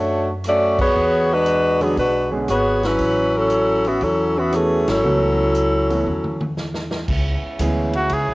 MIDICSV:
0, 0, Header, 1, 8, 480
1, 0, Start_track
1, 0, Key_signature, 3, "major"
1, 0, Tempo, 510638
1, 897, Time_signature, 4, 2, 24, 8
1, 7840, End_track
2, 0, Start_track
2, 0, Title_t, "Trumpet"
2, 0, Program_c, 0, 56
2, 7484, Note_on_c, 0, 66, 82
2, 7646, Note_on_c, 0, 68, 81
2, 7660, Note_off_c, 0, 66, 0
2, 7840, Note_off_c, 0, 68, 0
2, 7840, End_track
3, 0, Start_track
3, 0, Title_t, "Saxophone section"
3, 0, Program_c, 1, 65
3, 0, Note_on_c, 1, 57, 60
3, 0, Note_on_c, 1, 62, 68
3, 0, Note_on_c, 1, 66, 67
3, 0, Note_on_c, 1, 73, 74
3, 279, Note_off_c, 1, 73, 0
3, 280, Note_off_c, 1, 57, 0
3, 280, Note_off_c, 1, 62, 0
3, 280, Note_off_c, 1, 66, 0
3, 446, Note_on_c, 1, 57, 88
3, 451, Note_on_c, 1, 74, 96
3, 452, Note_on_c, 1, 66, 80
3, 456, Note_on_c, 1, 61, 80
3, 736, Note_off_c, 1, 57, 0
3, 738, Note_off_c, 1, 74, 0
3, 739, Note_off_c, 1, 66, 0
3, 741, Note_off_c, 1, 61, 0
3, 768, Note_on_c, 1, 66, 81
3, 772, Note_on_c, 1, 59, 83
3, 775, Note_on_c, 1, 68, 77
3, 776, Note_on_c, 1, 73, 96
3, 1235, Note_off_c, 1, 66, 0
3, 1237, Note_off_c, 1, 59, 0
3, 1239, Note_off_c, 1, 68, 0
3, 1239, Note_off_c, 1, 73, 0
3, 1246, Note_on_c, 1, 56, 76
3, 1246, Note_on_c, 1, 62, 79
3, 1246, Note_on_c, 1, 66, 79
3, 1250, Note_on_c, 1, 71, 96
3, 1706, Note_off_c, 1, 62, 0
3, 1714, Note_off_c, 1, 56, 0
3, 1714, Note_off_c, 1, 66, 0
3, 1715, Note_on_c, 1, 68, 78
3, 1716, Note_off_c, 1, 71, 0
3, 1717, Note_on_c, 1, 59, 64
3, 1717, Note_on_c, 1, 62, 68
3, 1719, Note_on_c, 1, 54, 64
3, 1855, Note_off_c, 1, 62, 0
3, 1862, Note_off_c, 1, 68, 0
3, 1863, Note_off_c, 1, 59, 0
3, 1864, Note_off_c, 1, 54, 0
3, 1866, Note_on_c, 1, 62, 67
3, 1869, Note_on_c, 1, 71, 78
3, 1871, Note_on_c, 1, 66, 69
3, 1874, Note_on_c, 1, 56, 70
3, 2165, Note_off_c, 1, 62, 0
3, 2167, Note_off_c, 1, 71, 0
3, 2168, Note_off_c, 1, 66, 0
3, 2169, Note_off_c, 1, 56, 0
3, 2350, Note_on_c, 1, 68, 86
3, 2350, Note_on_c, 1, 73, 91
3, 2354, Note_on_c, 1, 66, 82
3, 2359, Note_on_c, 1, 59, 82
3, 2647, Note_off_c, 1, 68, 0
3, 2647, Note_off_c, 1, 73, 0
3, 2649, Note_off_c, 1, 66, 0
3, 2652, Note_off_c, 1, 59, 0
3, 2672, Note_on_c, 1, 71, 93
3, 2674, Note_on_c, 1, 64, 86
3, 2676, Note_on_c, 1, 54, 81
3, 2680, Note_on_c, 1, 61, 84
3, 3142, Note_off_c, 1, 54, 0
3, 3143, Note_off_c, 1, 64, 0
3, 3147, Note_off_c, 1, 71, 0
3, 3151, Note_off_c, 1, 61, 0
3, 3153, Note_on_c, 1, 54, 78
3, 3154, Note_on_c, 1, 64, 80
3, 3160, Note_on_c, 1, 69, 90
3, 3162, Note_on_c, 1, 61, 85
3, 3627, Note_off_c, 1, 61, 0
3, 3628, Note_off_c, 1, 54, 0
3, 3628, Note_off_c, 1, 64, 0
3, 3631, Note_off_c, 1, 69, 0
3, 3637, Note_on_c, 1, 59, 70
3, 3638, Note_on_c, 1, 52, 72
3, 3638, Note_on_c, 1, 61, 72
3, 3638, Note_on_c, 1, 66, 75
3, 3780, Note_off_c, 1, 61, 0
3, 3783, Note_off_c, 1, 59, 0
3, 3784, Note_off_c, 1, 52, 0
3, 3784, Note_off_c, 1, 66, 0
3, 3791, Note_on_c, 1, 54, 76
3, 3791, Note_on_c, 1, 61, 77
3, 3791, Note_on_c, 1, 64, 77
3, 3796, Note_on_c, 1, 69, 93
3, 4110, Note_off_c, 1, 54, 0
3, 4110, Note_off_c, 1, 61, 0
3, 4110, Note_off_c, 1, 64, 0
3, 4113, Note_off_c, 1, 69, 0
3, 4118, Note_on_c, 1, 66, 80
3, 4119, Note_on_c, 1, 52, 66
3, 4120, Note_on_c, 1, 59, 68
3, 4121, Note_on_c, 1, 61, 67
3, 4261, Note_off_c, 1, 52, 0
3, 4263, Note_off_c, 1, 61, 0
3, 4264, Note_off_c, 1, 66, 0
3, 4265, Note_off_c, 1, 59, 0
3, 4272, Note_on_c, 1, 52, 71
3, 4272, Note_on_c, 1, 68, 86
3, 4273, Note_on_c, 1, 57, 76
3, 4274, Note_on_c, 1, 61, 72
3, 4582, Note_off_c, 1, 61, 0
3, 4590, Note_off_c, 1, 68, 0
3, 4591, Note_off_c, 1, 52, 0
3, 4591, Note_off_c, 1, 57, 0
3, 4593, Note_on_c, 1, 61, 74
3, 4595, Note_on_c, 1, 64, 77
3, 4597, Note_on_c, 1, 69, 85
3, 4604, Note_on_c, 1, 54, 80
3, 6182, Note_off_c, 1, 61, 0
3, 6183, Note_off_c, 1, 64, 0
3, 6184, Note_off_c, 1, 69, 0
3, 6187, Note_off_c, 1, 54, 0
3, 7840, End_track
4, 0, Start_track
4, 0, Title_t, "Grand piano"
4, 0, Program_c, 2, 0
4, 1692, Note_on_c, 2, 50, 51
4, 1698, Note_on_c, 2, 56, 45
4, 1703, Note_on_c, 2, 59, 50
4, 1707, Note_on_c, 2, 61, 49
4, 1713, Note_on_c, 2, 66, 57
4, 1835, Note_off_c, 2, 50, 0
4, 1838, Note_off_c, 2, 56, 0
4, 1841, Note_off_c, 2, 59, 0
4, 1843, Note_off_c, 2, 61, 0
4, 1846, Note_off_c, 2, 66, 0
4, 2173, Note_on_c, 2, 50, 63
4, 2176, Note_on_c, 2, 56, 62
4, 2176, Note_on_c, 2, 59, 61
4, 2182, Note_on_c, 2, 61, 60
4, 2185, Note_on_c, 2, 68, 71
4, 2316, Note_off_c, 2, 50, 0
4, 2317, Note_off_c, 2, 56, 0
4, 2317, Note_off_c, 2, 59, 0
4, 2320, Note_off_c, 2, 61, 0
4, 2322, Note_off_c, 2, 68, 0
4, 4243, Note_on_c, 2, 52, 56
4, 4252, Note_on_c, 2, 57, 50
4, 4252, Note_on_c, 2, 59, 53
4, 4254, Note_on_c, 2, 61, 53
4, 4260, Note_on_c, 2, 66, 64
4, 4543, Note_off_c, 2, 52, 0
4, 4548, Note_off_c, 2, 57, 0
4, 4548, Note_off_c, 2, 59, 0
4, 4549, Note_off_c, 2, 61, 0
4, 4552, Note_off_c, 2, 66, 0
4, 4728, Note_on_c, 2, 52, 57
4, 4733, Note_on_c, 2, 57, 51
4, 4734, Note_on_c, 2, 59, 53
4, 4736, Note_on_c, 2, 61, 54
4, 4746, Note_on_c, 2, 66, 63
4, 5026, Note_off_c, 2, 52, 0
4, 5028, Note_off_c, 2, 57, 0
4, 5029, Note_off_c, 2, 59, 0
4, 5030, Note_off_c, 2, 61, 0
4, 5035, Note_off_c, 2, 66, 0
4, 5537, Note_on_c, 2, 52, 60
4, 5537, Note_on_c, 2, 57, 54
4, 5544, Note_on_c, 2, 59, 57
4, 5547, Note_on_c, 2, 61, 59
4, 5552, Note_on_c, 2, 66, 62
4, 5678, Note_off_c, 2, 52, 0
4, 5678, Note_off_c, 2, 57, 0
4, 5682, Note_off_c, 2, 59, 0
4, 5683, Note_off_c, 2, 61, 0
4, 5686, Note_off_c, 2, 66, 0
4, 7144, Note_on_c, 2, 52, 60
4, 7144, Note_on_c, 2, 56, 57
4, 7147, Note_on_c, 2, 59, 57
4, 7150, Note_on_c, 2, 61, 54
4, 7156, Note_on_c, 2, 68, 69
4, 7434, Note_off_c, 2, 52, 0
4, 7435, Note_off_c, 2, 56, 0
4, 7436, Note_off_c, 2, 59, 0
4, 7437, Note_off_c, 2, 61, 0
4, 7440, Note_off_c, 2, 68, 0
4, 7840, End_track
5, 0, Start_track
5, 0, Title_t, "Saxophone section"
5, 0, Program_c, 3, 65
5, 6633, Note_on_c, 3, 56, 66
5, 6633, Note_on_c, 3, 59, 66
5, 6636, Note_on_c, 3, 49, 78
5, 6639, Note_on_c, 3, 64, 85
5, 7840, Note_off_c, 3, 49, 0
5, 7840, Note_off_c, 3, 56, 0
5, 7840, Note_off_c, 3, 59, 0
5, 7840, Note_off_c, 3, 64, 0
5, 7840, End_track
6, 0, Start_track
6, 0, Title_t, "Upright bass"
6, 0, Program_c, 4, 32
6, 0, Note_on_c, 4, 42, 75
6, 856, Note_off_c, 4, 42, 0
6, 896, Note_on_c, 4, 40, 84
6, 1818, Note_off_c, 4, 40, 0
6, 1852, Note_on_c, 4, 35, 79
6, 2300, Note_off_c, 4, 35, 0
6, 2338, Note_on_c, 4, 32, 75
6, 2783, Note_off_c, 4, 32, 0
6, 2811, Note_on_c, 4, 33, 78
6, 3736, Note_off_c, 4, 33, 0
6, 3772, Note_on_c, 4, 40, 78
6, 4543, Note_off_c, 4, 40, 0
6, 4579, Note_on_c, 4, 32, 70
6, 4723, Note_off_c, 4, 32, 0
6, 4730, Note_on_c, 4, 37, 80
6, 5656, Note_off_c, 4, 37, 0
6, 5696, Note_on_c, 4, 40, 71
6, 6619, Note_off_c, 4, 40, 0
6, 6657, Note_on_c, 4, 37, 76
6, 6961, Note_off_c, 4, 37, 0
6, 7133, Note_on_c, 4, 38, 86
6, 7601, Note_off_c, 4, 38, 0
6, 7613, Note_on_c, 4, 37, 75
6, 7773, Note_off_c, 4, 37, 0
6, 7773, Note_on_c, 4, 35, 54
6, 7840, Note_off_c, 4, 35, 0
6, 7840, End_track
7, 0, Start_track
7, 0, Title_t, "Muted upright bass strokes"
7, 6982, Note_on_c, 9, 29, 36
7, 7076, Note_off_c, 9, 29, 0
7, 7840, End_track
8, 0, Start_track
8, 0, Title_t, "Drums"
8, 412, Note_on_c, 9, 42, 50
8, 416, Note_on_c, 9, 37, 55
8, 506, Note_off_c, 9, 42, 0
8, 510, Note_off_c, 9, 37, 0
8, 740, Note_on_c, 9, 36, 79
8, 740, Note_on_c, 9, 49, 67
8, 834, Note_off_c, 9, 36, 0
8, 834, Note_off_c, 9, 49, 0
8, 1370, Note_on_c, 9, 42, 55
8, 1464, Note_off_c, 9, 42, 0
8, 1700, Note_on_c, 9, 46, 38
8, 1794, Note_off_c, 9, 46, 0
8, 1852, Note_on_c, 9, 46, 42
8, 1853, Note_on_c, 9, 36, 31
8, 1946, Note_off_c, 9, 46, 0
8, 1947, Note_off_c, 9, 36, 0
8, 2330, Note_on_c, 9, 42, 54
8, 2334, Note_on_c, 9, 37, 54
8, 2424, Note_off_c, 9, 42, 0
8, 2428, Note_off_c, 9, 37, 0
8, 2661, Note_on_c, 9, 46, 36
8, 2664, Note_on_c, 9, 38, 43
8, 2755, Note_off_c, 9, 46, 0
8, 2758, Note_off_c, 9, 38, 0
8, 2806, Note_on_c, 9, 46, 46
8, 2811, Note_on_c, 9, 36, 32
8, 2900, Note_off_c, 9, 46, 0
8, 2905, Note_off_c, 9, 36, 0
8, 3287, Note_on_c, 9, 42, 54
8, 3381, Note_off_c, 9, 42, 0
8, 3614, Note_on_c, 9, 46, 39
8, 3708, Note_off_c, 9, 46, 0
8, 3767, Note_on_c, 9, 46, 41
8, 3773, Note_on_c, 9, 36, 30
8, 3861, Note_off_c, 9, 46, 0
8, 3867, Note_off_c, 9, 36, 0
8, 4253, Note_on_c, 9, 42, 51
8, 4256, Note_on_c, 9, 37, 52
8, 4347, Note_off_c, 9, 42, 0
8, 4350, Note_off_c, 9, 37, 0
8, 4584, Note_on_c, 9, 51, 67
8, 4587, Note_on_c, 9, 38, 78
8, 4678, Note_off_c, 9, 51, 0
8, 4681, Note_off_c, 9, 38, 0
8, 5215, Note_on_c, 9, 42, 57
8, 5309, Note_off_c, 9, 42, 0
8, 5549, Note_on_c, 9, 46, 37
8, 5643, Note_off_c, 9, 46, 0
8, 5700, Note_on_c, 9, 47, 40
8, 5794, Note_off_c, 9, 47, 0
8, 5866, Note_on_c, 9, 47, 53
8, 5960, Note_off_c, 9, 47, 0
8, 6022, Note_on_c, 9, 47, 72
8, 6116, Note_off_c, 9, 47, 0
8, 6178, Note_on_c, 9, 38, 56
8, 6272, Note_off_c, 9, 38, 0
8, 6338, Note_on_c, 9, 38, 61
8, 6432, Note_off_c, 9, 38, 0
8, 6495, Note_on_c, 9, 38, 79
8, 6589, Note_off_c, 9, 38, 0
8, 6655, Note_on_c, 9, 49, 76
8, 6657, Note_on_c, 9, 36, 70
8, 6749, Note_off_c, 9, 49, 0
8, 6751, Note_off_c, 9, 36, 0
8, 7135, Note_on_c, 9, 44, 57
8, 7135, Note_on_c, 9, 51, 70
8, 7137, Note_on_c, 9, 36, 20
8, 7229, Note_off_c, 9, 44, 0
8, 7229, Note_off_c, 9, 51, 0
8, 7231, Note_off_c, 9, 36, 0
8, 7457, Note_on_c, 9, 51, 46
8, 7551, Note_off_c, 9, 51, 0
8, 7609, Note_on_c, 9, 51, 56
8, 7616, Note_on_c, 9, 36, 18
8, 7703, Note_off_c, 9, 51, 0
8, 7710, Note_off_c, 9, 36, 0
8, 7840, End_track
0, 0, End_of_file